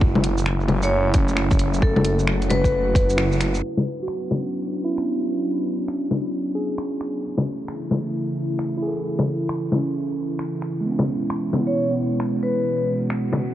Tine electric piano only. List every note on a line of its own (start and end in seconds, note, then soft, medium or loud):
0.00 0.17 E4 medium
1.14 2.05 C#4 medium
3.16 3.81 E4 medium
4.03 4.91 F#4 medium
4.85 5.75 E4 medium
6.55 7.42 G#4 medium
8.77 9.66 E4 medium
8.82 9.69 G#4 soft
8.87 9.71 A4 soft
9.76 10.66 C#4 soft
10.81 11.05 G#3 medium
10.86 11.08 B3 soft
10.91 11.11 C#4 soft
11.55 11.90 B3 medium
11.91 12.80 B3 soft